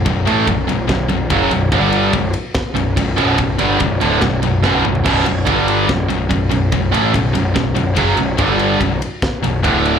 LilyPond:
<<
  \new Staff \with { instrumentName = "Distorted electric guitar" } { \clef bass \time 4/4 \key b \minor \tempo 4 = 144 <b,, fis,>8 <a, e a>8 <b,, fis,>8 <b,, fis,>8 <b,, fis,>8 <b,, fis,>8 <fis, cis fis>8 <b,, fis,>8 | <g, d g>4 <b,, fis,>8 r4 <b,, fis,>8 <b,, fis,>8 <b,, fis, b,>8 | <b,, fis,>8 <g, d g>8 <b,, fis,>8 <d, a, d>8 <b,, fis,>8 <b,, fis,>8 <b,, fis, b,>8 <b,, fis,>8 | <b,, fis, b,>8 <b,, fis,>8 <g, d g>4 <b,, fis,>8 <b,, fis,>8 <b,, fis,>8 <b,, fis,>8 |
<b,, fis,>8 <a, e a>8 <b,, fis,>8 <b,, fis,>8 <b,, fis,>8 <b,, fis,>8 <fis, cis fis>8 <b,, fis,>8 | <g, d g>4 <b,, fis,>8 r4 <b,, fis,>8 <d, a, d>4 | }
  \new Staff \with { instrumentName = "Distorted electric guitar" } { \clef bass \time 4/4 \key b \minor <b,, fis,>8 <a, e a>8 <b,, fis,>8 <b,, fis,>8 <b,, fis,>8 <b,, fis,>8 <fis, cis fis>8 <b,, fis,>8 | <g, d g>4 <b,, fis,>8 r4 <b,, fis,>8 <b,, fis,>8 <b,, fis, b,>8 | <b,, fis,>8 <g, d g>8 <b,, fis,>8 <d, a, d>8 <b,, fis,>8 <b,, fis,>8 <b,, fis, b,>8 <b,, fis,>8 | <b,, fis, b,>8 <b,, fis,>8 <g, d g>4 <b,, fis,>8 <b,, fis,>8 <b,, fis,>8 <b,, fis,>8 |
<b,, fis,>8 <a, e a>8 <b,, fis,>8 <b,, fis,>8 <b,, fis,>8 <b,, fis,>8 <fis, cis fis>8 <b,, fis,>8 | <g, d g>4 <b,, fis,>8 r4 <b,, fis,>8 <d, a, d>4 | }
  \new Staff \with { instrumentName = "Picked electric bass" } { \clef bass \time 4/4 \key b \minor b,,,8 a,,8 b,,,8 b,,,8 b,,,8 b,,,8 fis,,8 b,,,8 | g,,4 b,,,8 r4 b,,,8 b,,,8 b,,,8 | b,,,8 g,,8 b,,,8 d,,8 b,,,8 b,,,8 b,,,8 b,,,8 | b,,,8 b,,,8 g,,4 b,,,8 b,,,8 b,,,8 b,,,8 |
b,,,8 a,,8 b,,,8 b,,,8 b,,,8 b,,,8 fis,,8 b,,,8 | g,,4 b,,,8 r4 b,,,8 d,,4 | }
  \new DrumStaff \with { instrumentName = "Drums" } \drummode { \time 4/4 <bd cymr>8 cymr8 <bd cymr>8 cymr8 <bd cymr sn>8 cymr8 <bd cymr>8 cymr8 | <bd cymr>8 cymr8 <bd cymr>8 cymr8 <bd cymr sn>8 cymr8 <bd cymr>8 cymr8 | <bd cymr>8 cymr8 <bd cymr>8 cymr8 <bd cymr sn>8 cymr8 <bd sn>8 toml16 tomfh16 | <cymc bd>8 cymr8 <bd cymr>8 cymr8 <bd cymr sn>8 cymr8 <bd cymr>8 cymr8 |
<bd cymr>8 cymr8 <bd cymr>8 cymr8 <bd cymr sn>8 cymr8 <bd cymr>8 cymr8 | <bd cymr>8 cymr8 <bd cymr>8 cymr8 <bd cymr sn>8 cymr8 <bd cymr>8 cymr8 | }
>>